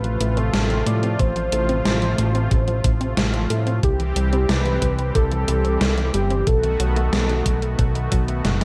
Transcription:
0.00 0.18 A1 loud
0.00 3.79 C3 medium
0.00 3.79 F3 medium
0.00 3.79 A3 medium
0.00 3.79 F4 medium
0.00 0.39 B4 loud
0.04 0.20 F3 medium
0.04 closed hi-hat soft
0.21 0.51 A1 medium
0.21 0.36 A3 medium
0.21 closed hi-hat medium
0.37 0.51 C4 medium
0.37 0.88 A4 medium
0.37 closed hi-hat soft
0.54 0.84 A1 medium
0.54 0.62 C3 medium
0.54 snare loud
0.54 closed hi-hat medium
0.70 0.86 F3 medium
0.70 closed hi-hat soft
0.87 1.17 A2 medium
0.87 1.02 A3 medium
0.87 1.21 D5 loud
0.87 closed hi-hat medium
1.03 1.16 C4 medium
1.03 closed hi-hat soft
1.19 1.50 A1 medium
1.19 1.28 C3 medium
1.19 1.85 C5 loud
1.19 kick loud
1.19 closed hi-hat medium
1.36 1.52 F3 medium
1.36 closed hi-hat soft
1.52 1.83 A1 medium
1.52 1.68 A3 medium
1.52 closed hi-hat medium
1.69 1.82 C4 medium
1.69 closed hi-hat soft
1.85 2.15 A1 medium
1.85 1.94 C3 medium
1.85 3.13 C5 loud
1.85 snare loud
1.85 closed hi-hat medium
2.02 2.18 F3 medium
2.02 closed hi-hat soft
2.18 2.48 A1 medium
2.18 2.34 A3 medium
2.18 closed hi-hat medium
2.35 2.48 C4 medium
2.35 closed hi-hat soft
2.51 2.81 A1 loud
2.51 2.59 C3 medium
2.51 kick loud
2.51 closed hi-hat medium
2.68 2.83 F3 medium
2.68 closed hi-hat soft
2.84 3.14 A1 medium
2.84 3.00 A3 medium
2.84 kick loud
2.84 closed hi-hat medium
3.01 3.14 C4 medium
3.01 closed hi-hat soft
3.17 3.47 A1 medium
3.17 3.25 C3 medium
3.17 snare loud
3.17 closed hi-hat medium
3.34 3.49 F3 medium
3.34 closed hi-hat soft
3.50 3.80 A2 medium
3.50 3.66 A3 medium
3.50 closed hi-hat medium
3.67 3.80 C4 medium
3.67 closed hi-hat soft
3.83 4.13 C2 loud
3.83 3.91 C3 medium
3.83 6.44 E3 medium
3.83 6.44 G3 medium
3.83 6.44 C4 medium
3.83 6.44 G4 medium
3.83 4.51 G4 loud
3.83 kick loud
3.83 closed hi-hat medium
4.00 4.15 E3 medium
4.00 closed hi-hat soft
4.16 4.46 C2 loud
4.16 4.32 G3 medium
4.16 closed hi-hat medium
4.33 4.46 C4 medium
4.33 closed hi-hat soft
4.49 4.79 C2 medium
4.49 4.57 C3 medium
4.49 5.15 B4 loud
4.49 snare loud
4.49 closed hi-hat medium
4.66 4.81 E3 medium
4.66 closed hi-hat soft
4.82 5.12 C2 medium
4.82 4.98 G3 medium
4.82 kick medium
4.82 closed hi-hat medium
4.99 5.12 C4 medium
4.99 closed hi-hat soft
5.15 5.45 C2 loud
5.15 5.23 C3 medium
5.15 6.10 A4 loud
5.15 kick loud
5.15 closed hi-hat medium
5.31 5.47 E3 medium
5.31 closed hi-hat soft
5.48 5.78 C2 medium
5.48 5.64 G3 medium
5.48 closed hi-hat medium
5.65 5.78 C4 medium
5.65 closed hi-hat soft
5.81 6.11 C2 medium
5.81 5.89 C3 medium
5.81 snare loud
5.81 closed hi-hat medium
5.98 6.13 E3 medium
5.98 closed hi-hat soft
6.14 6.44 G1 medium
6.14 6.30 G3 medium
6.14 6.49 G4 medium
6.14 closed hi-hat medium
6.30 6.44 C4 medium
6.30 closed hi-hat soft
6.47 6.77 B1 medium
6.47 6.55 B2 medium
6.47 8.64 D#3 medium
6.47 8.64 A3 medium
6.47 8.64 B3 medium
6.47 8.64 F#4 medium
6.47 8.45 A4 loud
6.47 kick loud
6.47 closed hi-hat medium
6.63 6.79 D#3 medium
6.63 closed hi-hat soft
6.80 7.10 B1 loud
6.80 6.96 F#3 medium
6.80 closed hi-hat medium
6.96 7.10 A3 medium
6.96 closed hi-hat soft
7.13 7.43 B1 medium
7.13 7.21 B2 medium
7.13 snare loud
7.13 closed hi-hat medium
7.29 7.45 D#3 medium
7.29 closed hi-hat soft
7.46 7.76 B1 medium
7.46 7.62 F#3 medium
7.46 kick medium
7.46 closed hi-hat medium
7.62 7.76 A3 medium
7.62 closed hi-hat soft
7.79 8.09 B1 loud
7.79 7.87 B2 medium
7.79 kick loud
7.79 closed hi-hat medium
7.95 8.11 D#3 medium
7.95 closed hi-hat soft
8.12 8.42 B1 medium
8.12 8.28 F#3 medium
8.12 kick loud
8.12 closed hi-hat medium
8.28 8.42 A3 medium
8.28 closed hi-hat soft
8.45 8.64 F#1 medium
8.45 8.53 B2 medium
8.45 snare medium
8.45 closed hi-hat medium

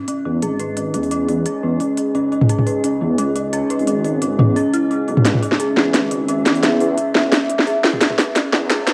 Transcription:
0.00 0.08 C#4 medium
0.00 8.94 C#4 medium
0.00 8.94 G#4 medium
0.00 5.21 D#5 medium
0.08 0.24 C#4 medium
0.08 closed hi-hat medium
0.25 0.44 E2 medium
0.25 0.41 C#4 loud
0.42 0.96 G#1 medium
0.42 0.53 G#4 loud
0.42 closed hi-hat medium
0.59 0.75 B4 medium
0.59 closed hi-hat medium
0.77 0.93 C#4 medium
0.77 closed hi-hat medium
0.94 1.45 E2 medium
0.94 1.10 C#4 medium
0.94 closed hi-hat medium
1.03 open hi-hat soft
1.11 1.27 C#4 loud
1.11 closed hi-hat medium
1.28 1.44 C#4 loud
1.28 open hi-hat medium
1.46 1.56 G#4 medium
1.46 closed hi-hat medium
1.63 1.79 E2 medium
1.63 1.79 B4 medium
1.80 1.97 C#4 medium
1.80 open hi-hat medium
1.98 2.13 C#4 medium
1.98 closed hi-hat medium
2.15 2.31 C#4 loud
2.15 open hi-hat soft
2.32 2.48 C#4 loud
2.32 open hi-hat soft
2.42 mid tom medium
2.49 2.60 G#4 medium
2.49 closed hi-hat medium
2.59 mid tom soft
2.66 2.82 B4 medium
2.66 open hi-hat medium
2.84 3.00 C#4 medium
2.84 closed hi-hat medium
3.01 3.17 E2 medium
3.01 3.17 C#4 medium
3.18 3.61 C#2 medium
3.18 3.34 C#4 loud
3.18 closed hi-hat medium
3.36 3.51 C#4 loud
3.36 closed hi-hat medium
3.53 3.63 G#4 loud
3.53 closed hi-hat medium
3.70 3.86 B4 medium
3.70 closed hi-hat medium
3.79 4.41 G#1 medium
3.79 open hi-hat soft
3.87 4.03 C#4 medium
3.87 closed hi-hat medium
4.04 4.20 C#4 medium
4.04 open hi-hat medium
4.22 4.37 C#4 loud
4.22 closed hi-hat medium
4.39 4.55 E2 medium
4.39 4.55 C#4 loud
4.39 mid tom medium
4.56 4.67 G#4 medium
4.56 open hi-hat medium
4.74 4.89 E4 loud
4.74 closed hi-hat medium
4.91 5.07 C#4 medium
4.91 open hi-hat soft
5.08 5.17 B1 medium
5.08 5.24 C#4 medium
5.08 open hi-hat soft
5.17 5.25 D#2 loud
5.17 mid tom medium
5.25 5.41 C#2 loud
5.25 5.41 C#4 loud
5.25 8.94 E5 medium
5.25 snare soft
5.25 closed hi-hat medium
5.35 mid tom soft
5.43 5.58 C#4 loud
5.43 open hi-hat medium
5.52 snare soft
5.60 5.70 G#4 medium
5.60 closed hi-hat medium
5.77 5.96 E2 medium
5.77 5.93 B4 medium
5.77 snare medium
5.94 6.48 G#1 medium
5.94 6.10 C#4 medium
5.94 snare medium
5.94 closed hi-hat medium
6.11 6.27 C#4 medium
6.11 closed hi-hat medium
6.29 6.44 C#4 loud
6.29 closed hi-hat medium
6.46 6.97 E2 medium
6.46 6.62 C#4 loud
6.46 snare medium
6.46 closed hi-hat medium
6.55 open hi-hat soft
6.63 6.74 G#4 loud
6.63 snare medium
6.63 closed hi-hat medium
6.80 6.96 B4 medium
6.80 open hi-hat medium
6.97 7.14 C#4 medium
6.97 closed hi-hat medium
7.15 7.31 E2 medium
7.15 7.31 C#4 medium
7.15 snare medium
7.32 7.48 C#4 loud
7.32 snare medium
7.32 open hi-hat medium
7.49 7.65 C#4 loud
7.49 closed hi-hat medium
7.59 snare medium
7.66 7.77 G#4 loud
7.66 open hi-hat soft
7.84 8.00 B4 medium
7.84 snare medium
7.84 open hi-hat soft
7.93 mid tom medium
8.01 8.17 C#4 medium
8.01 snare medium
8.01 closed hi-hat medium
8.10 mid tom soft
8.18 8.34 C#4 medium
8.18 snare medium
8.18 open hi-hat medium
8.36 8.51 C#4 loud
8.36 snare medium
8.36 closed hi-hat medium
8.53 8.69 E2 medium
8.53 8.68 C#4 medium
8.53 snare medium
8.70 8.94 C#2 medium
8.70 8.80 G#4 loud
8.70 snare medium
8.70 closed hi-hat medium
8.87 8.94 B4 medium
8.87 snare medium
8.87 closed hi-hat medium

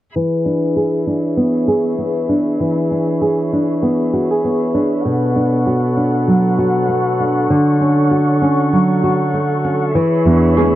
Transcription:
0.15 2.59 E3 medium
0.15 5.01 G#4 medium
0.15 10.75 C#5 medium
0.15 5.02 E5 medium
0.15 7.47 B5 medium
0.15 10.75 C#6 medium
0.15 cabasa soft
0.46 1.07 D4 medium
0.46 cabasa medium
0.76 1.67 G#4 medium
0.76 cabasa medium
0.94 cabasa soft
1.07 2.29 D4 soft
1.07 cabasa medium
1.37 1.98 B3 medium
1.37 cabasa soft
1.68 3.20 G#4 medium
1.68 cabasa medium
1.98 3.82 B3 soft
1.98 cabasa soft
2.16 cabasa soft
2.29 2.91 D4 medium
2.29 cabasa medium
2.60 5.05 E3 medium
2.60 cabasa soft
2.91 3.53 D4 soft
2.91 cabasa medium
3.09 cabasa soft
3.22 4.13 G#4 medium
3.22 cabasa medium
3.53 4.74 D4 medium
3.53 cabasa soft
3.60 cabasa soft
3.64 cabasa soft
3.71 cabasa soft
3.71 cabasa medium
3.74 cabasa medium
3.80 4.44 B3 medium
3.80 cabasa medium
3.83 cabasa medium
4.14 4.31 F#4 medium
4.14 cabasa medium
4.31 5.12 G#4 soft
4.45 6.88 B3 soft
4.45 cabasa soft
4.63 cabasa soft
4.75 5.36 D4 medium
4.75 cabasa medium
4.92 cabasa soft
5.05 7.50 B2 medium
5.05 9.92 A4 medium
5.05 9.93 F#5 medium
5.05 cabasa medium
5.23 cabasa soft
5.36 5.97 D4 medium
5.36 cabasa medium
5.41 cabasa medium
5.45 cabasa soft
5.49 cabasa soft
5.54 cabasa soft
5.67 6.58 F#4 medium
5.67 cabasa medium
5.84 cabasa soft
5.97 7.20 D4 medium
5.97 cabasa medium
6.08 cabasa medium
6.16 cabasa soft
6.18 cabasa soft
6.28 8.72 F#3 medium
6.28 cabasa medium
6.46 cabasa soft
6.59 8.11 F#4 medium
6.59 cabasa medium
6.77 cabasa soft
6.88 9.33 A3 medium
6.88 cabasa soft
7.07 cabasa soft
7.19 7.80 D4 medium
7.19 cabasa medium
7.38 cabasa soft
7.50 9.98 D3 medium
7.50 9.94 C#6 medium
7.50 cabasa soft
7.68 cabasa soft
7.81 8.41 C#4 medium
7.81 cabasa medium
8.05 cabasa soft
8.11 9.02 F#4 medium
8.11 cabasa medium
8.29 cabasa soft
8.42 9.63 C#4 soft
8.42 cabasa medium
8.60 cabasa soft
8.72 9.95 F#3 medium
8.72 cabasa soft
8.90 cabasa soft
9.03 10.02 F#4 medium
9.03 cabasa medium
9.06 cabasa medium
9.09 cabasa soft
9.12 cabasa soft
9.14 cabasa soft
9.34 10.02 A3 medium
9.34 cabasa soft
9.43 cabasa soft
9.64 10.02 C#4 medium
9.64 cabasa medium
9.95 10.75 E3 medium
9.95 10.75 G#4 medium
9.95 10.75 E5 medium
9.95 10.75 B5 medium
9.95 cabasa medium
10.13 cabasa soft
10.26 10.38 E2 medium
10.26 10.75 D4 medium
10.26 cabasa medium
10.44 cabasa medium
10.57 10.75 G#4 medium
10.57 cross-stick medium
10.57 cabasa soft

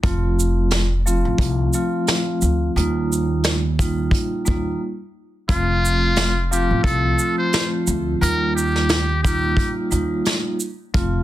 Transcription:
0.03 1.21 F1 loud
0.03 0.83 F3 loud
0.03 0.83 A3 medium
0.03 0.83 C4 medium
0.03 0.83 F4 loud
0.03 kick loud
0.03 closed hi-hat medium
0.40 shaker medium
0.71 snare loud
0.71 closed hi-hat medium
1.06 1.69 F3 loud
1.06 1.69 A3 medium
1.06 1.70 C4 medium
1.06 1.70 F4 loud
1.06 shaker medium
1.25 1.37 A1 medium
1.38 1.67 C2 loud
1.38 kick medium
1.38 closed hi-hat medium
1.73 2.69 F3 loud
1.73 2.69 A3 medium
1.73 2.70 C4 medium
1.73 2.70 F4 loud
1.73 shaker soft
2.07 snare loud
2.07 closed hi-hat medium
2.42 2.70 D2 medium
2.42 shaker soft
2.76 4.08 D#2 loud
2.76 3.56 G3 loud
2.76 3.56 A#3 medium
2.76 3.56 D#4 medium
2.76 3.56 F4 loud
2.76 closed hi-hat medium
3.13 shaker medium
3.44 snare loud
3.44 closed hi-hat medium
3.79 4.42 G3 medium
3.79 4.42 A#3 medium
3.79 4.42 D#4 medium
3.79 4.43 F4 loud
3.79 kick loud
3.79 closed hi-hat medium
3.79 shaker medium
4.11 kick medium
4.11 closed hi-hat medium
4.45 4.75 D#2 medium
4.45 4.80 G3 medium
4.45 4.80 A#3 medium
4.45 4.80 D#4 medium
4.45 4.80 F4 loud
4.45 kick loud
4.45 shaker soft
5.49 6.67 F1 loud
5.49 6.29 F3 medium
5.49 6.29 A3 medium
5.49 6.29 C4 medium
5.49 6.47 F4 loud
5.49 6.29 F4 loud
5.49 kick loud
5.49 closed hi-hat medium
5.85 shaker medium
6.16 snare loud
6.16 closed hi-hat medium
6.51 7.15 F3 medium
6.51 7.15 A3 medium
6.51 7.15 C4 medium
6.51 7.15 F4 loud
6.51 6.82 G4 medium
6.51 shaker medium
6.71 6.82 A1 medium
6.83 7.12 C2 loud
6.83 7.35 A4 medium
6.83 kick medium
6.83 closed hi-hat medium
7.19 8.15 F3 loud
7.19 8.15 A3 medium
7.19 8.15 C4 medium
7.19 8.15 F4 loud
7.19 shaker soft
7.38 7.69 C5 medium
7.53 snare loud
7.53 closed hi-hat medium
7.87 8.15 D2 loud
7.87 shaker medium
8.21 9.54 D#2 loud
8.21 9.01 G3 loud
8.21 9.01 A#3 medium
8.21 9.01 D#4 medium
8.21 9.02 F4 loud
8.21 8.52 A#4 medium
8.21 closed hi-hat medium
8.55 9.20 G4 medium
8.55 shaker medium
8.76 snare soft
8.89 snare loud
8.89 closed hi-hat medium
9.23 9.88 G3 medium
9.23 9.88 A#3 medium
9.23 9.88 D#4 medium
9.23 9.88 F4 loud
9.23 9.74 G4 medium
9.23 kick loud
9.23 closed hi-hat medium
9.23 shaker medium
9.57 kick medium
9.57 closed hi-hat medium
9.91 10.19 D#2 medium
9.91 10.55 G3 medium
9.91 10.55 A#3 medium
9.91 10.55 D#4 medium
9.91 10.55 F4 loud
9.91 closed hi-hat soft
9.91 shaker soft
10.25 snare loud
10.25 closed hi-hat medium
10.60 shaker soft
10.94 11.23 F1 loud
10.94 11.23 F3 loud
10.94 11.23 A3 medium
10.94 11.23 C4 medium
10.94 11.23 F4 loud
10.94 kick loud
10.94 closed hi-hat medium

